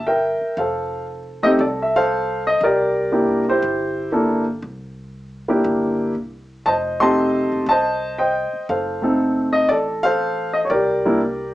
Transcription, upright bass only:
0.00 0.38 G1 medium
0.41 muted upright bass stroke soft
0.57 1.55 F1 medium
1.59 2.56 C2 medium
2.61 3.58 C2 medium
3.62 4.60 G1 medium
4.62 5.60 C2 medium
5.64 6.12 G1 medium
6.15 6.62 C2 medium
6.66 7.47 F1 medium
7.52 7.66 F#1 medium
7.66 8.48 C2 medium
8.53 muted upright bass stroke soft
8.69 9.66 F#1 medium
9.69 10.66 A1 medium
10.70 11.54 C2 medium

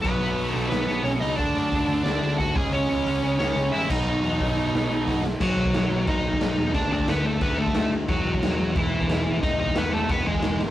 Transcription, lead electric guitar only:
0.02 0.68 B3 medium
0.02 0.55 B4 medium
0.55 0.68 A4 medium
0.70 1.03 B3 medium
0.70 1.04 B4 medium
1.04 1.11 C#4 medium
1.04 1.09 C#5 medium
1.21 1.37 D#4 medium
1.21 1.35 D#5 loud
1.35 2.01 D4 medium
1.35 2.02 D5 medium
2.03 2.37 D4 medium
2.03 2.36 D5 loud
2.38 2.56 F#4 medium
2.38 2.55 F#5 medium
2.55 2.72 G#4 medium
2.55 2.73 G#5 loud
2.73 3.37 C#4 medium
2.73 3.36 C#5 medium
3.39 3.71 C#4 medium
3.39 3.74 C#5 loud
3.72 3.89 E4 medium
3.72 3.89 E5 medium
3.89 5.21 D#4 medium
3.89 5.24 D#5 medium
5.41 6.04 F#3 medium
5.41 6.10 F#4 medium
6.08 6.74 D#4 loud
6.08 6.71 D#5 medium
6.75 6.91 D4 loud
6.75 6.90 D5 medium
6.92 7.09 D4 loud
6.92 7.07 D5 medium
7.09 7.26 B3 medium
7.09 7.24 B4 medium
7.25 7.41 A3 medium
7.25 7.41 A4 medium
7.42 7.59 B3 loud
7.42 7.57 B4 medium
7.58 7.92 A3 loud
7.58 7.89 A4 medium
8.09 8.72 F#3 medium
8.09 8.77 F#4 loud
8.77 9.39 E3 medium
8.77 9.42 E4 loud
9.43 9.59 D#4 loud
9.43 9.58 D#5 medium
9.60 9.77 D#4 medium
9.60 9.75 D#5 medium
9.77 9.94 B3 medium
9.77 9.93 B4 medium
9.93 10.10 A3 medium
9.93 10.09 A4 medium
10.11 10.26 B3 medium
10.11 10.26 B4 medium
10.27 10.60 G#3 loud
10.27 10.58 G#4 medium

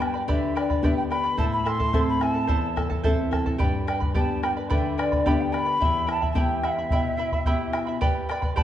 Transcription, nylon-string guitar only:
0.00 0.24 G2 medium
0.00 0.26 B3 soft
0.00 0.26 D4 soft
0.00 0.27 G4 soft
0.28 1.35 D3 medium
0.82 1.36 B3 soft
0.82 1.36 D4 soft
0.82 1.37 G4 soft
1.37 2.45 A2 medium
1.93 2.47 C4 soft
1.93 2.47 E4 soft
1.93 2.48 A4 soft
2.49 3.56 E2 medium
3.04 3.58 C4 soft
3.04 3.58 E4 soft
3.04 3.58 A4 medium
3.60 4.67 G2 medium
4.16 4.69 B3 soft
4.16 4.69 D4 soft
4.16 4.69 G4 soft
4.71 5.77 D3 medium
5.26 5.79 B3 soft
5.26 5.79 D4 soft
5.26 5.79 G4 soft
5.80 6.87 E2 soft
6.35 6.89 B3 soft
6.35 6.89 E4 soft
6.35 6.89 G4 soft
6.92 7.98 B2 medium
7.46 8.00 B3 soft
7.46 8.00 E4 soft
7.46 8.00 G4 soft

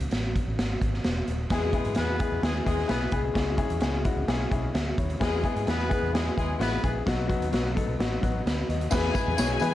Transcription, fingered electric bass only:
0.12 0.37 A1 medium
0.47 0.55 A1 medium
0.58 0.75 G#1 medium
0.82 0.99 G#1 medium
1.05 1.22 E1 medium
1.28 1.45 D#1 medium
1.50 1.76 E2 medium
1.86 1.94 G#2 medium
1.97 2.23 E2 medium
2.32 2.40 E2 medium
2.43 2.60 D#2 medium
2.66 2.83 D#2 medium
2.89 3.07 B1 medium
3.12 3.29 C2 medium
3.35 3.61 C#2 loud
3.70 3.79 E2 medium
3.82 4.08 C#2 medium
4.16 4.25 C#2 medium
4.28 4.45 B1 loud
4.52 4.69 B1 medium
4.75 4.92 D2 medium
4.98 5.15 D#2 medium
5.21 5.47 E2 medium
5.56 5.65 G#2 medium
5.67 5.93 E2 medium
6.02 6.28 E2 medium
6.38 6.55 D#2 medium
6.59 6.77 A1 medium
6.84 7.01 A#1 medium
7.06 7.32 B1 loud
7.40 7.49 D#2 medium
7.52 7.78 B1 medium
7.88 7.96 B1 medium
8.00 8.17 A1 medium
8.23 8.40 A1 medium
8.46 8.63 D2 medium
8.69 8.86 D#2 medium
8.93 9.09 E2 loud
9.27 9.35 E2 medium
9.39 9.56 B1 medium
9.62 9.74 E3 loud

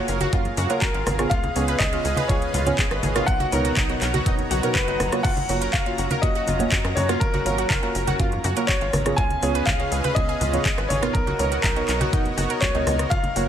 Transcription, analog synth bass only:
0.08 0.28 F#1 medium
0.33 0.52 F#2 medium
0.58 0.67 F#2 loud
0.82 0.92 G#1 medium
0.94 1.04 G#1 loud
1.07 1.26 G#1 loud
1.31 1.51 C#2 loud
1.56 1.75 C#2 medium
1.80 2.00 C#2 medium
2.05 2.15 C#2 medium
2.29 2.49 C#2 loud
2.54 2.74 C#2 medium
2.79 2.89 G#1 medium
2.91 3.01 G#1 loud
3.03 3.23 G#1 medium
3.28 3.47 B1 medium
3.53 3.72 C#2 loud
3.77 3.97 B1 loud
4.02 4.21 B1 medium
4.26 4.46 F#1 medium
4.51 4.61 B1 loud
4.75 4.85 F#1 medium
4.88 4.98 F#1 loud
5.00 5.10 F#1 loud
5.24 5.44 F#1 loud
5.49 5.69 F#1 medium
5.74 5.93 F#1 medium
5.98 6.08 F#1 medium
6.23 6.43 F#1 medium
6.48 6.67 F#1 medium
6.72 6.82 F#2 medium
6.84 6.94 F#2 loud
6.97 7.16 F#2 medium
7.21 7.41 G#1 medium
7.46 7.66 G#1 loud
7.70 7.90 F#1 medium
7.95 8.15 F#1 medium
8.20 8.39 F#2 medium
8.44 8.54 F#2 loud
8.69 8.79 G#1 medium
8.81 8.91 G#1 loud
8.93 9.13 G#1 loud
9.18 9.38 C#2 loud
9.42 9.62 C#2 medium
9.67 9.87 C#2 medium
9.92 10.02 C#2 medium
10.16 10.36 C#2 loud
10.41 10.61 C#2 medium
10.65 10.75 G#1 medium
10.78 10.88 G#1 loud
10.90 11.10 G#1 medium
11.15 11.34 B1 medium
11.39 11.59 C#2 loud
11.64 11.84 B1 loud
11.89 12.08 B1 loud
12.13 12.33 F#1 medium
12.38 12.48 F#1 loud
12.62 12.72 C#2 medium
12.74 12.84 C#2 loud
12.87 13.06 C#2 loud
13.11 13.31 F#1 loud
13.36 13.48 F#1 medium

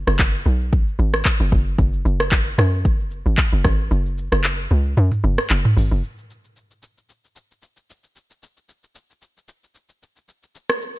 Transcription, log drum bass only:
0.07 0.43 F#1 medium
0.46 0.84 B1 medium
0.99 1.23 G#1 loud
1.40 1.51 F#1 loud
1.52 1.76 F#1 loud
1.79 2.03 F#1 loud
2.05 2.54 F#1 loud
2.58 2.87 F#2 loud
2.85 3.23 F#1 loud
3.26 3.37 G#1 medium
3.53 3.64 F#1 medium
3.65 3.89 G#1 medium
3.91 4.29 F#1 loud
4.32 4.67 F#1 medium
4.71 4.95 C#2 loud
4.97 5.11 F#2 loud
5.24 5.37 F#1 loud
5.50 5.64 F#1 loud
5.77 5.90 G#1 medium
5.91 6.02 F#1 loud

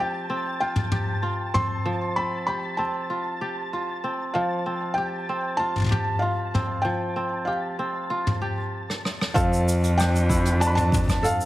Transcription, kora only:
0.00 1.84 F3 medium
0.00 0.29 C4 soft
0.00 0.30 E4 medium
0.00 0.91 G4 medium
0.30 1.54 C4 medium
0.61 1.22 F4 medium
0.92 2.47 G4 medium
1.23 3.09 F4 medium
1.54 2.17 C4 medium
1.86 4.34 F3 medium
2.17 2.78 C4 soft
2.48 3.41 G4 medium
2.78 4.03 C4 medium
3.10 3.73 F4 medium
3.41 4.97 G4 medium
3.73 5.58 F4 medium
4.04 4.66 C4 medium
4.35 6.84 F3 medium
4.66 5.29 C4 medium
4.98 5.91 G4 medium
5.29 6.54 C4 medium
5.59 6.22 F4 medium
5.91 7.46 G4 medium
6.22 8.09 F4 medium
6.54 7.16 C4 medium
6.85 9.14 F3 medium
7.16 7.79 C4 medium
7.47 8.41 G4 medium
7.79 9.59 C4 medium
8.10 9.61 F4 medium
8.42 9.83 G4 medium
9.35 11.45 F3 medium
9.35 11.22 A4 medium
9.98 10.60 D4 medium
10.29 11.45 E4 medium
10.60 11.45 D4 medium
11.23 11.45 A4 medium

